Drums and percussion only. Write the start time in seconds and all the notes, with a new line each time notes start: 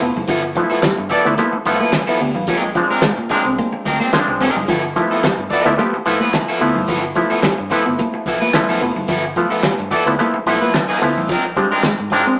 0.01 open hi-hat
0.16 high conga
0.28 kick, closed hi-hat, muted conga
0.56 kick, closed hi-hat, muted conga
0.83 snare, clap, closed hi-hat, high conga
0.98 closed hi-hat
1.10 kick, closed hi-hat
1.38 closed hi-hat, muted conga
1.65 closed hi-hat, muted conga
1.92 snare, clap, closed hi-hat, high conga
2.20 open hi-hat
2.35 high conga
2.47 kick, closed hi-hat
2.75 kick, closed hi-hat, muted conga
3.02 snare, clap, closed hi-hat, high conga
3.17 closed hi-hat
3.29 kick, closed hi-hat, low conga
3.45 closed hi-hat
3.58 kick, closed hi-hat, muted conga
3.86 kick, closed hi-hat, muted conga, low conga
4.13 snare, clap, closed hi-hat, high conga
4.41 open hi-hat
4.56 high conga
4.69 kick, closed hi-hat
4.96 kick, closed hi-hat, muted conga
5.23 snare, clap, closed hi-hat, high conga
5.39 closed hi-hat
5.50 kick, closed hi-hat
5.66 closed hi-hat
5.79 closed hi-hat, muted conga
6.07 closed hi-hat, muted conga
6.33 snare, clap, closed hi-hat, high conga
6.61 open hi-hat
6.75 high conga
6.88 kick, closed hi-hat
7.15 kick, closed hi-hat, muted conga
7.43 snare, clap, closed hi-hat, high conga
7.58 closed hi-hat
7.71 kick, closed hi-hat
7.99 kick, closed hi-hat, muted conga
8.26 kick, closed hi-hat, muted conga
8.53 snare, clap, closed hi-hat, high conga
8.81 open hi-hat
8.96 high conga
9.08 kick, closed hi-hat
9.36 kick, closed hi-hat, muted conga
9.63 snare, clap, closed hi-hat, high conga
9.79 closed hi-hat
9.91 kick, closed hi-hat
10.07 closed hi-hat
10.19 closed hi-hat, muted conga
10.47 closed hi-hat, muted conga
10.74 snare, clap, closed hi-hat, high conga
11.01 open hi-hat
11.16 high conga
11.29 kick, closed hi-hat
11.56 kick, closed hi-hat, muted conga
11.83 snare, clap, closed hi-hat, high conga
11.98 closed hi-hat
12.10 kick, closed hi-hat, low conga
12.26 closed hi-hat